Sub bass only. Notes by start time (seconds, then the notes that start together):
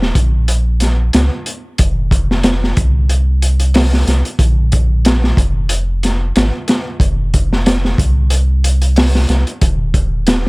Already playing: D#1
0.16 A#1
1.14 C#2
1.80 F1
2.77 C2
4.08 C2
4.39 A#1
5.38 F1
6.36 G#1
7.00 F1
7.99 C2
9.29 C2
9.62 D#1